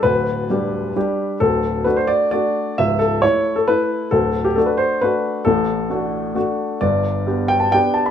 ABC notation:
X:1
M:3/4
L:1/16
Q:1/4=132
K:G
V:1 name="Grand piano"
B12 | A4 B c d2 d4 | e2 A2 ^c3 A B4 | A3 G A B c2 B4 |
A12 | d6 g a g2 a b |]
V:2 name="Grand piano"
[D,,,D,,]4 [G,DG]4 [G,DG]4 | [D,,,D,,]4 [A,DF]4 [A,DF]4 | [^C,,,^C,,]4 [A,E]4 [A,E]4 | [D,,,D,,]4 [A,DF]4 [A,DF]4 |
[A,,,A,,]4 [A,DF]4 [A,DF]4 | [G,,,G,,]4 [B,DG]4 [B,DG]4 |]